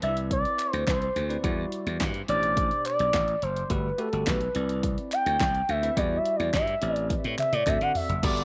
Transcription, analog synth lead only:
0.03 0.16 E5 loud
0.32 0.73 D5 loud
0.73 0.84 C5 loud
0.88 1.41 C5 medium
2.29 2.82 D5 loud
2.86 3.44 D5 loud
3.43 3.72 C5 loud
3.71 4.01 B4 medium
4.00 4.30 A4 medium
4.28 4.84 B4 medium
5.13 5.71 G5 loud
5.70 5.99 E5 loud
5.98 6.18 D5 medium
6.17 6.38 E5 medium
6.36 6.54 D5 medium
6.55 6.96 E5 medium
6.96 7.07 D5 medium
7.39 7.55 E5 medium
7.53 7.69 D5 medium
7.68 7.84 E5 loud
7.83 7.95 F#5 loud
7.96 8.26 E5 medium
8.24 8.44 D5 medium

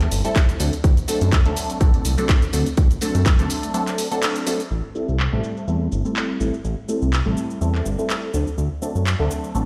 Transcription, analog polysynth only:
0.00 0.21 G3 medium
0.00 0.21 A3 medium
0.00 0.22 C4 medium
0.00 0.22 E4 medium
0.00 0.22 A4 loud
0.24 0.57 G3 medium
0.24 0.57 A3 medium
0.24 0.57 C4 medium
0.24 0.57 E4 medium
0.24 0.57 A4 loud
0.59 0.73 F#3 medium
0.59 0.74 A3 medium
0.59 0.74 C4 medium
0.59 0.74 D4 medium
0.59 0.74 A4 medium
1.08 1.29 F#3 loud
1.08 1.29 A3 medium
1.08 1.29 C4 medium
1.08 1.29 D4 medium
1.08 1.29 A4 loud
1.45 1.78 F#3 loud
1.45 1.78 A3 medium
1.45 1.78 C4 medium
1.45 1.78 D4 medium
1.45 1.78 A4 loud
1.80 2.15 F#3 medium
1.80 2.15 A3 medium
1.80 2.15 C4 medium
1.80 2.15 D4 medium
1.80 2.15 A4 loud
2.18 2.50 F#3 medium
2.18 2.50 A3 medium
2.18 2.51 C4 medium
2.18 2.51 D4 medium
2.18 2.51 A4 medium
2.53 2.67 F#3 medium
2.53 2.67 A3 medium
2.53 2.67 C4 medium
2.53 2.67 D4 medium
2.53 2.67 A4 medium
3.01 3.22 F#3 loud
3.01 3.22 A3 medium
3.01 3.22 C4 medium
3.01 3.23 D4 medium
3.01 3.23 A4 loud
3.39 3.71 F#3 medium
3.39 3.71 A3 medium
3.39 3.72 C4 medium
3.39 3.72 D4 medium
3.39 3.72 A4 loud
3.74 4.08 F#3 medium
3.74 4.08 A3 medium
3.74 4.08 C4 medium
3.74 4.08 D4 medium
3.74 4.09 A4 medium
4.11 4.44 F#3 medium
4.11 4.44 A3 medium
4.11 4.44 C4 medium
4.11 4.44 D4 medium
4.11 4.44 A4 medium
4.46 4.60 F#3 medium
4.46 4.61 A3 medium
4.46 4.61 C4 medium
4.46 4.61 D4 medium
4.46 4.61 A4 medium
4.95 5.16 G3 medium
4.95 5.16 A3 medium
4.95 5.16 C4 medium
4.95 5.16 E4 medium
4.95 5.16 A4 loud
5.32 5.65 G3 loud
5.32 5.65 A3 medium
5.32 5.65 C4 medium
5.32 5.65 E4 medium
5.32 5.65 A4 loud
5.67 6.02 G3 medium
5.67 6.02 A3 medium
5.67 6.02 C4 medium
5.67 6.02 E4 medium
5.67 6.02 A4 medium
6.05 6.38 G3 medium
6.05 6.38 A3 medium
6.05 6.38 C4 medium
6.05 6.38 E4 medium
6.05 6.38 A4 medium
6.40 6.54 G3 medium
6.40 6.54 A3 medium
6.40 6.54 C4 medium
6.40 6.54 E4 medium
6.40 6.54 A4 medium
6.88 7.09 G3 loud
6.88 7.09 A3 medium
6.88 7.09 C4 medium
6.88 7.10 E4 medium
6.88 7.10 A4 loud
7.26 7.58 G3 medium
7.26 7.59 A3 medium
7.26 7.59 C4 medium
7.26 7.59 E4 medium
7.26 7.59 A4 loud
7.61 7.95 G3 medium
7.61 7.95 A3 medium
7.61 7.96 C4 medium
7.61 7.96 E4 medium
7.61 7.96 A4 medium
7.98 8.31 G3 medium
7.98 8.31 A3 medium
7.98 8.31 C4 medium
7.98 8.31 E4 medium
7.98 8.31 A4 medium
8.33 8.48 F#3 medium
8.33 8.48 A3 medium
8.33 8.48 C4 medium
8.33 8.48 D4 medium
8.33 8.48 A4 medium
8.82 9.03 F#3 medium
8.82 9.03 A3 medium
8.82 9.03 C4 medium
8.82 9.03 D4 medium
8.82 9.03 A4 loud
9.19 9.52 F#3 loud
9.19 9.52 A3 medium
9.19 9.52 C4 medium
9.19 9.52 D4 medium
9.19 9.52 A4 loud
9.54 9.65 F#3 medium
9.54 9.65 A3 medium
9.54 9.65 C4 medium
9.54 9.65 D4 medium
9.54 9.65 A4 medium

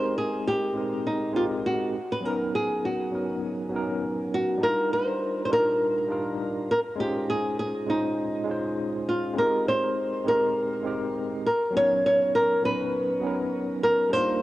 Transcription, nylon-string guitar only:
0.00 0.15 C5 loud
0.18 0.45 G#4 medium
0.47 1.08 G4 loud
1.07 1.36 D#4 medium
1.36 1.44 F4 medium
1.66 2.12 F#4 medium
2.12 2.25 B4 medium
2.25 2.54 A#4 loud
2.55 2.85 G#4 medium
2.85 3.40 F#4 medium
4.34 4.64 F#4 medium
4.63 4.93 A#4 loud
4.93 5.44 C5 loud
5.45 5.51 C5 medium
5.53 6.70 A#4 loud
6.71 6.79 A#4 medium
7.00 7.30 G4 loud
7.30 7.58 G#4 medium
7.59 7.90 G#4 medium
7.90 8.44 D#4 medium
9.09 9.38 F4 medium
9.38 9.68 A#4 loud
9.68 10.28 C5 loud
10.28 11.45 A#4 loud
11.46 11.76 A#4 medium
11.77 12.03 C#5 loud
12.06 12.33 C#5 loud
12.35 12.65 A#4 medium
12.65 13.20 B4 loud
13.83 14.13 A#4 loud
14.13 14.42 C5 loud

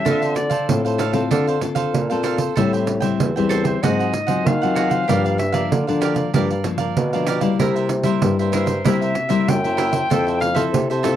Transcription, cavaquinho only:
0.05 0.20 D4 medium
0.05 0.20 A4 medium
0.05 0.21 C5 medium
0.05 0.20 F5 medium
0.22 0.34 A4 soft
0.22 0.35 C5 soft
0.22 0.35 F5 soft
0.35 muted cavaquinho stroke soft
0.50 0.83 A4 medium
0.50 0.82 C5 medium
0.50 0.81 F5 medium
0.85 0.98 A4 soft
0.85 0.99 C5 soft
0.85 0.99 F5 soft
0.98 1.14 D4 medium
0.98 1.14 A4 medium
0.98 1.13 C5 medium
0.98 1.12 F5 medium
1.13 1.30 A4 soft
1.13 1.29 C5 soft
1.13 1.29 F5 soft
1.31 1.46 D4 medium
1.31 1.46 A4 medium
1.31 1.47 C5 medium
1.31 1.46 F5 medium
1.47 1.60 A4 soft
1.47 1.61 C5 soft
1.47 1.61 F5 medium
1.61 muted cavaquinho stroke soft
1.75 2.08 A4 medium
1.75 2.08 C5 medium
1.75 2.07 F5 medium
2.10 2.23 A4 soft
2.10 2.24 C5 soft
2.10 2.24 F5 medium
2.23 2.39 D4 medium
2.23 2.39 A4 medium
2.23 2.38 C5 medium
2.23 2.36 F5 medium
2.37 2.54 A4 soft
2.37 2.55 C5 soft
2.37 2.54 F5 soft
2.56 2.71 A4 medium
2.56 2.71 C5 medium
2.56 2.72 E5 medium
2.56 2.72 G5 medium
2.73 2.86 C5 soft
2.73 2.86 E5 soft
2.73 2.87 G5 medium
2.87 muted cavaquinho stroke soft
3.00 3.34 C5 medium
3.00 3.33 E5 medium
3.00 3.33 G5 medium
3.36 3.49 C5 soft
3.36 3.50 E5 soft
3.36 3.50 G5 medium
3.49 3.65 A4 medium
3.49 3.65 C5 medium
3.49 3.64 E5 medium
3.49 3.63 G5 medium
3.64 3.81 C5 soft
3.64 3.81 E5 soft
3.64 3.80 G5 soft
3.83 3.97 F#4 medium
3.83 3.97 G#4 medium
3.83 3.98 C5 medium
3.83 3.98 F#5 medium
3.99 4.12 G#4 soft
3.99 4.12 C5 soft
3.99 4.13 F#5 soft
4.13 muted cavaquinho stroke soft
4.27 4.59 G#4 medium
4.27 4.59 C5 medium
4.27 4.58 F#5 medium
4.62 4.75 G#4 soft
4.62 4.76 C5 soft
4.62 4.76 F#5 medium
4.75 4.91 F#4 medium
4.75 4.91 G#4 medium
4.75 4.90 C5 medium
4.75 4.88 F#5 medium
4.90 5.07 G#4 soft
4.90 5.06 C5 soft
4.90 5.06 F#5 soft
5.08 5.22 G4 medium
5.08 5.23 A#4 medium
5.08 5.23 D5 medium
5.08 5.23 F5 medium
5.24 5.38 A#4 soft
5.24 5.38 D5 soft
5.24 5.38 F5 soft
5.38 muted cavaquinho stroke soft
5.52 5.85 A#4 medium
5.52 5.85 D5 medium
5.52 5.84 F5 medium
5.87 6.01 A#4 soft
5.87 6.01 D5 soft
5.87 6.02 F5 soft
6.01 6.16 G4 medium
6.01 6.16 A#4 medium
6.01 6.15 D5 medium
6.01 6.13 F5 medium
6.15 6.32 A#4 soft
6.15 6.32 D5 soft
6.15 6.31 F5 medium
6.34 6.48 G4 medium
6.34 6.49 A#4 medium
6.34 6.49 D5 medium
6.34 6.49 F5 medium
6.51 6.63 A#4 soft
6.51 6.64 D5 soft
6.51 6.64 F5 soft
6.64 muted cavaquinho stroke soft
6.78 7.11 A#4 medium
6.78 7.10 D5 medium
6.78 7.10 F5 medium
7.13 7.26 A#4 soft
7.13 7.27 D5 medium
7.13 7.27 F5 medium
7.27 7.42 G4 medium
7.27 7.42 A#4 medium
7.27 7.41 D5 medium
7.27 7.39 F5 medium
7.41 7.58 A#4 soft
7.41 7.57 D5 soft
7.41 7.57 F5 soft
7.59 7.74 E4 medium
7.59 7.74 A#4 medium
7.59 7.75 C5 medium
7.59 7.74 E5 medium
7.76 7.89 A#4 soft
7.76 7.89 C5 medium
7.76 7.89 E5 medium
7.90 muted cavaquinho stroke soft
8.04 8.37 A#4 medium
8.04 8.36 C5 medium
8.04 8.35 E5 medium
8.39 8.52 A#4 soft
8.39 8.53 C5 soft
8.39 8.53 E5 medium
8.52 8.67 E4 medium
8.52 8.67 A#4 medium
8.52 8.66 C5 medium
8.52 8.65 E5 medium
8.66 8.83 A#4 soft
8.66 8.83 C5 soft
8.66 8.82 E5 soft
8.84 8.99 E4 medium
8.84 9.00 A#4 medium
8.84 9.00 C5 medium
8.84 9.00 E5 medium
9.01 9.14 A#4 soft
9.01 9.14 C5 soft
9.01 9.15 E5 medium
9.15 muted cavaquinho stroke soft
9.29 9.62 A#4 medium
9.29 9.61 C5 medium
9.29 9.61 E5 medium
9.64 9.77 A#4 soft
9.64 9.77 C5 soft
9.64 9.78 E5 medium
9.77 9.93 E4 medium
9.77 9.93 A#4 medium
9.77 9.91 C5 medium
9.77 9.90 E5 medium
9.92 10.09 A#4 soft
9.92 10.08 C5 soft
9.92 10.08 E5 soft
10.10 10.25 F4 medium
10.10 10.25 A4 medium
10.10 10.26 C5 medium
10.10 10.25 E5 medium
10.27 10.39 A4 soft
10.27 10.40 C5 soft
10.27 10.40 E5 medium
10.40 muted cavaquinho stroke soft
10.55 10.87 A4 medium
10.55 10.87 C5 medium
10.55 10.86 E5 medium
10.90 11.03 A4 soft
10.90 11.03 C5 soft
10.90 11.04 E5 medium
11.03 11.16 F4 medium
11.03 11.16 A4 medium
11.03 11.16 C5 medium
11.03 11.16 E5 medium

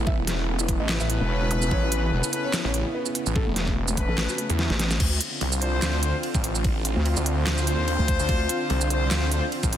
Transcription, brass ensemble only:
0.69 2.31 C#4 loud
0.69 2.31 A4 medium
0.69 2.31 B4 loud
2.33 2.72 C#4 medium
2.33 2.72 A4 medium
2.33 2.72 B4 loud
3.97 4.47 C#4 medium
3.97 4.47 A4 medium
3.97 4.47 B4 loud
5.62 6.01 D4 medium
5.62 6.01 F4 medium
5.62 6.01 C5 loud
6.03 6.17 D4 medium
6.03 6.17 F4 medium
6.03 6.17 C5 loud
7.26 8.88 D4 loud
7.26 8.88 F4 loud
7.26 8.88 C5 loud
8.90 9.29 D4 medium
8.90 9.29 F4 medium
8.90 9.29 C5 loud
9.32 9.46 D4 loud
9.32 9.46 F4 medium
9.32 9.46 C5 loud

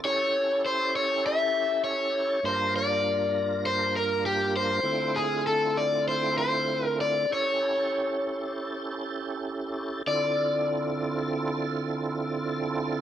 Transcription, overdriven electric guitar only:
0.05 0.61 C#5 loud
0.66 0.95 C5 medium
0.96 1.26 C#5 medium
1.26 1.84 E5 loud
1.84 2.45 C#5 loud
2.46 2.73 C5 loud
2.76 3.65 D5 loud
3.66 3.93 C5 loud
3.96 4.25 A#4 loud
4.26 4.53 G4 medium
4.57 5.17 C5 loud
5.16 5.43 G#4 medium
5.47 5.77 A4 medium
5.77 6.05 D5 medium
6.08 6.35 C5 medium
6.38 6.87 C5 medium
6.87 7.01 A#4 medium
7.01 7.33 D5 medium
7.33 9.30 C#5 medium
10.08 13.01 D5 medium

